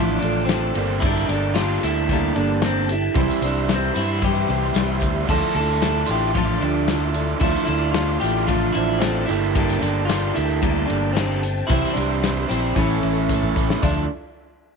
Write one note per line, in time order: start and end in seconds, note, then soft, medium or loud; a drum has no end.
0.00 0.17 A1 loud
0.00 0.49 D3 medium
0.00 0.75 D3 medium
0.00 0.50 F3 loud
0.00 0.72 F3 medium
0.00 0.48 A3 medium
0.00 0.75 A3 medium
0.00 0.50 D4 medium
0.00 0.74 D4 medium
0.00 0.19 E4 loud
0.00 0.74 F4 medium
0.00 0.51 A4 loud
0.00 0.73 D5 medium
0.00 0.71 D6 medium
0.19 0.70 A1 medium
0.19 0.45 D4 loud
0.19 ride medium
0.23 0.76 D4 medium
0.23 0.76 F4 medium
0.23 0.76 A4 medium
0.23 tambourine soft
0.45 1.02 C4 loud
0.45 ride loud
0.49 0.76 A3 medium
0.49 0.77 D4 medium
0.49 0.77 E4 medium
0.49 0.75 A4 medium
0.49 snare loud
0.49 tambourine loud
0.75 1.24 G1 loud
0.75 1.54 G2 loud
0.75 1.54 D3 loud
0.75 1.56 G3 loud
0.75 1.55 A#3 loud
0.75 1.62 A#3 medium
0.75 1.62 D4 medium
0.75 1.03 G4 soft
0.75 1.62 G4 medium
0.75 1.02 A4 medium
0.75 1.62 A4 medium
0.75 3.13 G5 medium
0.75 3.14 A5 medium
0.75 ride medium
0.80 1.04 D4 soft
0.90 tambourine soft
1.00 1.30 G3 medium
1.00 1.30 A#3 medium
1.00 1.26 E4 loud
1.00 kick loud
1.00 ride loud
1.05 1.30 D4 medium
1.05 1.30 G4 medium
1.05 1.30 A4 medium
1.16 tambourine medium
1.28 1.77 G1 loud
1.28 1.53 D4 medium
1.28 1.57 A4 medium
1.28 ride medium
1.28 tambourine medium
1.32 1.57 D4 medium
1.32 1.57 G4 medium
1.54 2.87 G2 medium
1.54 2.87 D3 medium
1.54 2.87 G3 medium
1.54 1.83 A#3 medium
1.54 1.82 F4 loud
1.54 snare loud
1.54 ride loud
1.54 tambourine medium
1.58 1.83 D4 medium
1.58 1.84 G4 medium
1.58 1.83 A4 medium
1.83 2.31 D2 loud
1.83 2.35 E4 loud
1.83 2.11 G4 soft
1.83 2.10 A4 medium
1.83 ride medium
1.83 tambourine medium
1.88 2.11 D4 soft
1.96 tambourine soft
2.09 2.63 G3 medium
2.09 2.62 A#3 medium
2.09 2.62 D4 medium
2.09 2.64 G4 medium
2.09 2.64 A4 medium
2.09 kick medium
2.09 ride loud
2.36 3.08 G1 medium
2.36 2.92 A#3 medium
2.36 2.60 D4 loud
2.36 2.93 D4 medium
2.36 2.92 G4 medium
2.36 2.93 A4 medium
2.36 ride medium
2.36 tambourine soft
2.62 2.89 A#3 medium
2.62 2.90 C4 loud
2.62 2.90 D4 medium
2.62 2.90 G4 medium
2.62 2.87 A4 medium
2.62 snare loud
2.62 ride loud
2.62 tambourine loud
2.89 3.17 D4 soft
2.89 3.45 E4 medium
2.89 3.16 G4 medium
2.89 3.15 A4 medium
2.89 ride medium
2.89 tambourine medium
3.03 tambourine soft
3.15 3.28 C2 loud
3.15 3.42 C3 medium
3.15 3.42 E3 medium
3.15 3.43 G3 medium
3.15 3.91 C4 medium
3.15 3.43 C4 medium
3.15 3.91 E4 medium
3.15 3.43 E4 medium
3.15 3.91 G4 medium
3.15 5.28 G4 medium
3.15 3.91 C5 medium
3.15 3.42 C5 medium
3.15 5.27 E5 medium
3.15 5.27 C6 medium
3.15 kick loud
3.15 ride loud
3.15 tambourine soft
3.30 tambourine medium
3.41 3.90 C2 loud
3.41 3.69 C4 medium
3.41 3.71 D4 medium
3.41 3.70 E4 medium
3.41 3.69 C5 medium
3.41 ride medium
3.41 tambourine medium
3.47 3.67 G3 medium
3.56 tambourine soft
3.68 3.95 G3 medium
3.68 3.95 C4 medium
3.68 3.95 E4 medium
3.68 snare loud
3.68 ride loud
3.68 tambourine loud
3.72 3.99 C4 medium
3.72 3.94 C5 medium
3.84 tambourine soft
3.95 4.44 G2 loud
3.95 5.28 C3 medium
3.95 5.25 E3 medium
3.95 4.23 G3 soft
3.95 4.23 C4 soft
3.95 4.23 E4 soft
3.95 4.24 E4 medium
3.95 4.22 C5 medium
3.95 ride medium
3.95 tambourine medium
4.10 tambourine soft
4.22 4.76 C3 medium
4.22 5.29 E3 medium
4.22 4.75 G3 medium
4.22 4.76 C4 medium
4.22 4.78 E4 medium
4.22 4.99 G4 medium
4.22 4.77 C5 loud
4.22 kick medium
4.22 ride loud
4.22 tambourine soft
4.35 tambourine soft
4.49 4.73 C2 loud
4.49 5.05 C4 medium
4.49 5.05 E4 medium
4.49 5.05 G4 medium
4.49 5.05 C5 medium
4.49 ride medium
4.49 tambourine soft
4.61 tambourine soft
4.74 4.99 C2 medium
4.74 5.29 G3 medium
4.74 5.29 C4 medium
4.74 snare loud
4.74 ride loud
4.74 tambourine loud
4.79 5.31 E4 medium
4.79 5.31 C5 medium
4.88 tambourine soft
5.00 5.26 D2 medium
5.00 kick medium
5.00 ride medium
5.00 tambourine medium
5.15 tambourine soft
5.26 5.41 D2 loud
5.26 6.09 D3 loud
5.26 6.04 D4 medium
5.26 6.04 F4 medium
5.26 6.06 F4 loud
5.26 6.04 A4 medium
5.26 kick loud
5.26 crash loud
5.30 5.56 D3 medium
5.30 5.56 F3 medium
5.30 5.57 A3 medium
5.30 5.57 D4 medium
5.30 5.56 E4 medium
5.30 9.26 F4 medium
5.30 5.54 A4 loud
5.30 5.55 A4 medium
5.30 7.41 E5 medium
5.30 9.26 D6 medium
5.55 6.03 D2 loud
5.55 5.83 E4 medium
5.55 5.82 A4 medium
5.55 6.05 A4 loud
5.55 ride medium
5.59 5.81 A3 soft
5.59 5.82 D4 medium
5.82 6.09 A3 medium
5.82 6.09 D4 medium
5.82 6.10 E4 medium
5.82 snare loud
5.82 ride loud
5.82 tambourine loud
5.86 6.09 A4 medium
6.06 6.57 A1 loud
6.06 7.39 D3 medium
6.06 7.41 A3 medium
6.06 7.41 D4 medium
6.06 7.39 F4 medium
6.06 6.36 A4 soft
6.06 ride medium
6.06 tambourine medium
6.11 6.36 A3 soft
6.11 6.36 D4 soft
6.11 6.36 E4 medium
6.11 6.34 G4 medium
6.22 tambourine soft
6.35 6.89 D3 medium
6.35 6.89 F3 medium
6.35 6.87 A3 medium
6.35 6.89 D4 medium
6.35 6.62 F4 medium
6.35 6.91 A4 medium
6.35 kick medium
6.35 ride loud
6.61 7.33 D2 medium
6.61 7.11 D4 medium
6.61 7.18 D4 medium
6.61 7.19 F4 medium
6.61 7.19 G4 medium
6.61 ride medium
6.61 tambourine soft
6.88 7.15 A3 medium
6.88 7.16 D4 medium
6.88 7.16 E4 medium
6.88 snare loud
6.88 ride loud
6.88 tambourine loud
6.92 7.14 A4 medium
7.14 7.43 E4 soft
7.14 7.42 A4 medium
7.14 ride medium
7.14 tambourine medium
7.19 7.42 A3 soft
7.19 7.42 D4 soft
7.29 tambourine soft
7.40 7.54 D2 loud
7.40 7.69 D3 medium
7.40 7.69 F3 medium
7.40 7.69 A3 medium
7.40 8.17 D4 medium
7.40 7.69 D4 medium
7.40 7.64 E4 loud
7.40 8.18 F4 loud
7.40 8.17 F4 medium
7.40 8.17 A4 medium
7.40 7.67 A4 loud
7.40 9.27 F5 medium
7.40 kick loud
7.40 ride loud
7.44 7.68 E4 medium
7.56 tambourine medium
7.65 8.16 D2 loud
7.65 7.92 E4 loud
7.65 7.95 A4 medium
7.65 ride medium
7.69 7.92 A3 medium
7.69 7.94 D4 medium
7.69 7.95 E4 medium
7.92 8.21 A3 medium
7.92 8.22 D4 medium
7.92 8.21 E4 medium
7.92 8.20 F4 medium
7.92 snare loud
7.92 ride loud
7.92 tambourine loud
7.98 8.20 A4 medium
8.20 8.70 A1 medium
8.20 9.27 D3 medium
8.20 8.49 E4 medium
8.20 9.26 F4 medium
8.20 8.47 G4 loud
8.20 8.48 A4 medium
8.20 ride medium
8.20 tambourine medium
8.24 8.47 A3 soft
8.24 8.47 D4 soft
8.36 tambourine soft
8.47 9.01 D3 medium
8.47 9.02 F3 medium
8.47 9.01 A3 medium
8.47 9.01 D4 medium
8.47 8.72 F4 medium
8.47 9.02 A4 medium
8.47 kick medium
8.47 ride medium
8.73 9.24 A1 loud
8.73 9.28 D4 medium
8.73 9.02 E4 loud
8.73 9.29 F4 medium
8.73 9.29 C5 medium
8.73 ride medium
8.73 tambourine soft
8.99 9.29 A3 medium
8.99 9.25 C4 loud
8.99 9.29 D4 medium
8.99 snare loud
8.99 ride loud
8.99 tambourine loud
9.04 9.30 E4 medium
9.04 9.28 A4 medium
9.26 9.77 G1 medium
9.26 10.06 G2 loud
9.26 10.07 D3 loud
9.26 10.07 G3 loud
9.26 10.07 A#3 loud
9.26 10.15 D4 medium
9.26 9.79 E4 loud
9.26 10.15 G4 medium
9.26 9.56 A4 soft
9.26 ride medium
9.26 tambourine medium
9.30 10.15 A#3 medium
9.30 9.55 D4 soft
9.30 9.56 G4 soft
9.30 10.15 A4 loud
9.30 11.68 G5 medium
9.30 11.68 A5 medium
9.43 tambourine soft
9.55 9.82 G3 medium
9.55 9.82 A#3 loud
9.55 9.83 D4 medium
9.55 9.82 G4 medium
9.55 9.80 A4 medium
9.55 kick loud
9.55 ride loud
9.69 tambourine loud
9.79 10.30 G1 loud
9.79 10.08 D4 medium
9.79 10.09 G4 medium
9.79 10.08 A4 medium
9.79 ride medium
9.79 tambourine medium
9.84 10.08 D4 medium
10.05 11.40 G2 medium
10.05 11.40 D3 medium
10.05 11.41 G3 medium
10.05 10.35 A#3 medium
10.05 10.36 D4 medium
10.05 10.35 F4 medium
10.09 10.35 G4 medium
10.09 10.33 A4 medium
10.09 snare loud
10.09 ride loud
10.09 tambourine loud
10.34 10.84 D2 loud
10.34 10.62 D4 soft
10.34 10.85 E4 loud
10.34 10.62 G4 soft
10.34 10.62 A4 medium
10.34 ride medium
10.34 tambourine medium
10.50 tambourine soft
10.62 11.15 G3 medium
10.62 11.14 A#3 medium
10.62 11.15 D4 loud
10.62 11.16 G4 medium
10.62 11.16 A4 medium
10.62 kick medium
10.62 ride loud
10.86 11.45 A#3 medium
10.86 11.12 D4 loud
10.86 11.45 D4 medium
10.86 11.45 G4 medium
10.86 11.45 A4 medium
10.90 11.62 G1 medium
10.90 ride medium
10.90 tambourine soft
11.13 11.42 A#3 medium
11.13 11.69 C4 medium
11.13 11.43 D4 medium
11.13 ride loud
11.17 11.43 G4 medium
11.17 11.42 A4 medium
11.17 snare loud
11.17 tambourine loud
11.43 11.71 D4 soft
11.43 11.70 G4 soft
11.43 11.69 A4 medium
11.43 ride medium
11.43 tambourine medium
11.58 tambourine soft
11.67 11.82 C2 loud
11.67 11.96 C3 medium
11.67 11.96 E3 medium
11.67 11.96 G3 medium
11.67 12.45 C4 medium
11.67 11.96 E4 loud
11.67 12.45 E4 medium
11.67 12.45 G4 medium
11.67 12.45 C5 medium
11.67 kick loud
11.67 ride loud
11.71 11.97 C4 medium
11.71 11.96 E4 loud
11.71 12.76 G4 medium
11.71 11.94 C5 medium
11.71 13.80 E5 medium
11.71 12.76 C6 medium
11.71 tambourine soft
11.85 tambourine medium
11.93 12.44 C2 loud
11.93 12.44 D4 medium
11.93 12.23 E4 medium
11.93 12.22 C5 medium
11.93 ride medium
11.93 tambourine medium
11.98 12.21 G3 soft
11.98 12.22 C4 medium
12.12 tambourine soft
12.23 12.49 G3 medium
12.23 12.50 C4 medium
12.23 12.49 E4 medium
12.23 12.48 C5 medium
12.23 snare loud
12.23 ride loud
12.23 tambourine loud
12.38 tambourine soft
12.49 12.74 A#1 loud
12.49 12.75 C3 medium
12.49 12.75 E3 medium
12.49 12.77 G3 soft
12.49 12.74 C4 medium
12.49 12.77 C4 soft
12.49 12.77 E4 medium
12.49 12.76 C5 medium
12.49 ride medium
12.49 tambourine medium
12.66 tambourine soft
12.75 13.00 A1 loud
12.75 13.29 A2 medium
12.75 13.30 E3 medium
12.75 13.29 A3 medium
12.75 12.97 C#4 medium
12.75 13.52 C#4 medium
12.75 13.30 C#4 medium
12.75 12.97 E4 medium
12.75 13.30 E4 medium
12.75 12.97 A4 medium
12.75 13.30 A4 loud
12.75 13.83 A4 medium
12.75 12.97 C#5 medium
12.75 13.83 C#6 medium
12.75 kick medium
12.75 ride medium
12.75 tambourine soft
12.90 tambourine soft
13.02 13.75 A1 medium
13.02 13.59 C#4 medium
13.02 13.59 E4 medium
13.02 13.59 A4 medium
13.02 13.59 C#5 medium
13.02 ride medium
13.02 tambourine soft
13.17 tambourine soft
13.29 13.57 A3 medium
13.29 13.57 C#4 medium
13.29 13.56 E4 medium
13.29 kick medium
13.29 tambourine loud
13.34 13.55 A4 medium
13.43 mid tom medium
13.56 13.82 A2 medium
13.56 13.81 E3 medium
13.56 13.83 C#4 soft
13.56 13.83 E4 soft
13.56 13.83 A4 medium
13.56 kick medium
13.56 tambourine medium
13.60 13.82 A3 soft
13.70 snare medium
13.81 14.08 D2 loud
13.81 14.04 D3 medium
13.81 14.04 F3 medium
13.81 14.05 A3 medium
13.81 14.08 D4 medium
13.81 14.05 D4 medium
13.81 14.07 E4 medium
13.81 14.05 E4 loud
13.81 14.07 F4 medium
13.81 14.04 F4 loud
13.81 14.05 A4 medium
13.81 14.07 D5 medium
13.81 14.07 E5 medium
13.81 kick loud
13.81 floor tom loud
13.81 tambourine medium
13.81 splash medium